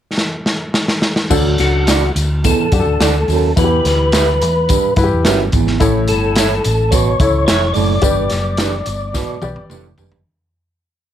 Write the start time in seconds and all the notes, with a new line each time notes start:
0.18 snare
0.46 snare
0.74 snare
0.88 snare
1.02 snare
1.16 snare
1.30 D2 F#3 D4 F#4 A4, kick, crash, tambourine
1.58 C#2 F#4, snare, closed hi-hat, tambourine
1.87 A3 D4 F#4 D5, snare, closed hi-hat, tambourine
2.16 D2, closed hi-hat, tambourine
2.44 E2 A4, kick, closed hi-hat, tambourine
2.72 F#2 D4 F#4 G4, kick, closed hi-hat, tambourine
2.80 A4
2.86 D2
3.00 D2 A3 D4 F#4 D5, snare, closed hi-hat, tambourine
3.28 D#2 F#2, open hi-hat, tambourine
3.56 E2 E3 E4 F#4 B4, kick, closed hi-hat, tambourine
3.64 G4
3.85 D2 B4, snare, closed hi-hat, tambourine
4.12 E4 G4 B4 E5, snare, closed hi-hat, tambourine
4.42 E2, closed hi-hat, tambourine
4.69 G2, kick, closed hi-hat, tambourine
4.96 G2 E4 F#4 B4, kick, closed hi-hat, tambourine
5.04 G4
5.13 E2
5.25 G1 F#2 E4 G4 B4 E5, snare, closed hi-hat, tambourine
5.52 G#1 E2, kick, closed hi-hat, tambourine
5.67 snare
5.80 A1 A2 E4 A4 C#5, kick, closed hi-hat, tambourine
6.08 G1 A4, closed hi-hat, tambourine
6.36 E4 A4 C#5 E5, snare, closed hi-hat, tambourine
6.65 A1, closed hi-hat, tambourine
6.91 B2 C#5, kick, closed hi-hat, tambourine
7.20 C#2 E4 A4 C#5, kick, closed hi-hat, tambourine
7.47 F1 E4 A4 C#5 E5, snare, closed hi-hat, tambourine
7.74 F#1 A2 D5, open hi-hat, tambourine
8.02 G1 G2 G3 G4 B4 D5, kick, closed hi-hat, tambourine
8.30 F#1, snare, closed hi-hat, tambourine
8.57 D4 G4 B4 D5, snare, closed hi-hat, tambourine
8.86 G1, closed hi-hat, tambourine
9.14 B2, kick, snare, tambourine
9.42 B1 G4 B4 D5, high tom, tambourine
9.56 G1, high tom
9.70 F1 A2 D4 G4 B4 D5, mid tom, tambourine
9.98 F#1 G2, floor tom, tambourine
10.12 floor tom